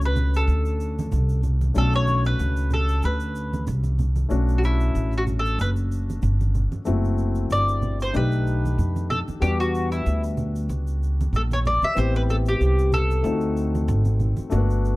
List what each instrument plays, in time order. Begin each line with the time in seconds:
Already playing: upright bass C#2, grand piano A3 C#4 D4 F#4
0.02 mandolin B4, shaker
0.16 low conga, shaker
0.34 mandolin A4, shaker
0.48 upright bass D2, shaker
0.65 shaker
0.80 shaker
0.99 high conga, shaker
1.12 upright bass C2, low conga, shaker
1.29 shaker
1.43 low conga, shaker
1.61 high conga, shaker
1.74 upright bass B1, grand piano A3 C#4 D4 F#4, mandolin A4, shaker
1.93 mandolin C#5, shaker
2.07 high conga, shaker
2.25 mandolin B4, shaker
2.39 upright bass C#2, high conga, shaker
2.57 shaker
2.70 mandolin A4, low conga, shaker
2.88 shaker
3.02 upright bass D2, mandolin B4, shaker
3.20 shaker
3.35 shaker
3.53 high conga, shaker
3.67 upright bass C2, low conga, shaker
3.84 high conga, shaker
3.99 low conga, shaker
4.16 high conga, shaker
4.29 upright bass B1, grand piano A3 C#4 D4 F#4, shaker
4.49 shaker
4.58 mandolin F#4
4.63 mandolin E4, shaker
4.80 shaker
4.95 upright bass A1, shaker
5.12 shaker
5.18 mandolin F#4
5.27 low conga, shaker
5.39 mandolin A4
5.45 shaker
5.58 upright bass F#1, mandolin B4, shaker
5.76 shaker
5.92 shaker
6.10 high conga, shaker
6.22 upright bass G1, low conga, shaker
6.41 high conga, shaker
6.55 low conga, shaker
6.72 muted upright bass stroke, high conga, shaker
6.85 upright bass F#1, grand piano A3 C4 E4 F#4, shaker
7.05 shaker
7.18 shaker
7.35 shaker
7.50 upright bass G1, mandolin D5, shaker
7.68 shaker
7.82 low conga, shaker
8.00 mandolin C5, shaker
8.13 upright bass B1, grand piano A3 D4 D#4 G4, mandolin B4, shaker
8.32 shaker
8.47 shaker
8.65 high conga, shaker
8.78 upright bass F2, low conga, shaker
8.96 high conga, shaker
9.10 mandolin A4, low conga, shaker
9.28 muted upright bass stroke, high conga, shaker
9.40 upright bass E2, grand piano G3 B3 D4 F#4, mandolin G4, shaker
9.60 mandolin F#4, shaker
9.75 shaker
9.92 mandolin E4, shaker
10.06 upright bass D2, shaker
10.24 shaker
10.37 low conga, shaker
10.56 shaker
10.69 upright bass C#2, shaker
10.87 shaker
11.03 shaker
11.21 high conga, shaker
11.33 upright bass A#1, mandolin A4, low conga, shaker
11.51 mandolin C#5, high conga, shaker
11.65 mandolin D5, low conga, shaker
11.82 mandolin E5, muted upright bass stroke, high conga, shaker
11.95 upright bass A1, grand piano B3 C4 E4 G4, mandolin C5, shaker
12.15 mandolin B4, shaker
12.29 mandolin A4, shaker
12.46 mandolin G4, shaker
12.60 upright bass C2, shaker
12.78 shaker
12.92 mandolin A4, low conga, shaker
13.11 shaker
13.23 upright bass D2, grand piano A3 C4 D#4 F4, shaker
13.32 grand piano F#4
13.41 shaker
13.57 shaker
13.75 high conga, shaker
13.88 upright bass G#1, low conga, shaker
14.05 high conga, shaker
14.20 low conga, shaker
14.37 muted upright bass stroke, high conga, shaker
14.50 upright bass G1, grand piano A3 A#3 D4 F#4, shaker
14.57 grand piano B3
14.70 shaker
14.85 shaker